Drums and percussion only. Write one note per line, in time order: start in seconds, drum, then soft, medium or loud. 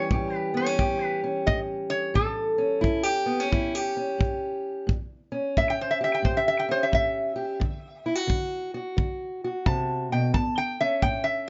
0.11 kick medium
0.79 kick medium
1.48 kick medium
2.16 kick medium
2.84 kick medium
3.53 kick medium
4.21 kick medium
4.89 kick medium
5.57 kick medium
6.25 kick medium
6.93 kick medium
7.61 kick medium
8.30 kick medium
8.98 kick medium
9.66 kick medium
10.34 kick medium
11.02 kick medium